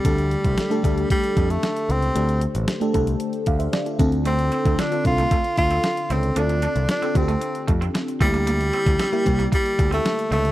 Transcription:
<<
  \new Staff \with { instrumentName = "FM electric piano" } { \time 4/4 \key d \minor \tempo 4 = 114 << { r1 | r2 r8 <d'' f''>16 <c'' e''>16 d''16 <f' a'>8 r16 | r1 | r1 |
r1 | } \\ { <a d' g' a'>4 r16 <a d' g' a'>16 <a d' g' a'>4. r4 | <a d' g' c''>4 r16 <a d' g' a'>16 <a d' g' a'>4. r8 <c' d' f' a'>8~ | <c' d' f' a'>4 r16 <c' d' f' a'>16 <c' d' f' a'>4. r4 | <c' d' f' a'>4 r16 <c' d' f' a'>16 <c' d' f' g' a'>4. r8 <g bes e' g'>8~ |
<g bes e' g'>4 r16 <g bes e' g'>16 <g bes e' g'>4. r4 | } >> }
  \new Staff \with { instrumentName = "FM electric piano" } { \clef bass \time 4/4 \key d \minor d4. r2 r8 | d4. r2 d8~ | d4 r2 r8 d8~ | d4 r2 r8 d8~ |
d4 r2 r8 d8 | }
  \new Staff \with { instrumentName = "Clean electric guitar" } { \time 4/4 \key d \minor r1 | r1 | a16 r16 c'16 r16 c'16 r8 a16 a16 r8 c'16 r8 c'16 r16 | d'16 r16 d'16 r8 c'16 r16 a16 r8 a16 c'16 r8 c'16 bes16 |
bes16 r16 c'16 r16 c'16 r8 bes16 bes16 r8 c'16 r8 c'16 r16 | }
  \new Staff \with { instrumentName = "Tenor saxophone" } { \time 4/4 \key d \minor g2 g8. a8. c'8~ | c'8 r2. r8 | c'4 d'8 f'4 f'4 c'8 | d'4 d'8 c'4 r4 g8~ |
g2 g8. a8. a8 | }
  \new Staff \with { instrumentName = "Picked electric bass" } { \clef bass \time 4/4 \key d \minor d,8. c,16 r8 d,8 r8 f,8 r8 cis,8 | d,8. a,,16 r8 c,8 r8 d,8 r8 d,8~ | d,8. d,16 r8 c,8 r8 d,8 r8 cis,8 | d,8. c,16 r8 d,8 r8 f,8 r8 d,8~ |
d,8. d,16 r8 c,8 r8 d,8 r8 cis,8 | }
  \new DrumStaff \with { instrumentName = "Drums" } \drummode { \time 4/4 <hh bd>16 hh16 hh16 <hh bd>16 <hh sn>16 hh16 <hh bd>16 hh16 <hh bd>16 hh16 <hh bd>16 hh16 <hh sn>16 hh16 hh16 hh16 | hh16 hh16 hh16 hh16 <hh sn>16 hh16 <hh bd>16 hh16 hh16 hh16 <hh bd>16 hh16 <hh sn>16 hh16 <hh bd>16 hh16 | hh16 hh16 hh16 <hh bd>16 <hh sn>16 hh16 <hh bd>16 hh16 <hh bd>16 hh16 <hh bd>16 hh16 <hh sn>16 hh16 hh16 hh16 | hh16 hh16 hh16 hh16 <hh sn>16 hh16 <hh bd>16 hh16 hh16 hh16 <hh bd>16 hh16 <hh sn>16 hh16 <hh bd>16 hh16 |
hh16 hh16 hh16 <hh bd>16 <hh sn>16 hh16 <hh bd>16 hh16 <hh bd>16 hh16 <hh bd>16 hh16 <hh sn>16 hh16 hh16 hh16 | }
>>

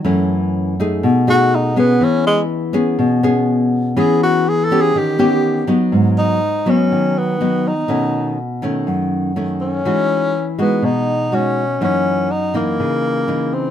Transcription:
<<
  \new Staff \with { instrumentName = "Tenor saxophone" } { \time 4/4 \key e \major \tempo 4 = 123 r2 r8 fis'8 dis'8 b8 | cis'8 gis8 r2. | gis'8 fis'8 \tuplet 3/2 { gis'8 a'8 gis'8 } g'4.~ g'16 r16 | r8 dis'4 cis'4 b4 dis'8~ |
dis'4 r2 r8 cis'8~ | cis'4. b8 dis'4 cis'4 | cis'4 dis'8 ais2 c'8 | }
  \new Staff \with { instrumentName = "Nylon-string guitar" } { \time 4/4 \key e \major << { <e a cis'>4. <a dis' gis'>4 <a dis' gis'>4 <b cis' gis'>8~ | <b cis' gis'>4. <b cis' gis'>4 <b cis' gis'>4. | <b cis' gis'>4 r8 <b cis' g'>4 <b cis' g'>4 <fis b dis'>8~ | <fis b dis'>4 r8 <fis b dis'>4. <fis b dis'>8 r8 |
<dis a cis'>4 r8 <dis a cis'>4. <dis a cis'>4 | <gis dis' fis'>4 r8 <gis dis' fis'>4. <gis dis' fis'>8 r8 | <e ais dis'>4 r8 <e ais dis'>4. <e ais dis'>4 | } \\ { fis,2 b,2 | e2 b,2 | e2 dis2 | gis,2 dis2 |
b,2 fis,2 | e2 b,2 | fis,2 cis2 | } >> }
>>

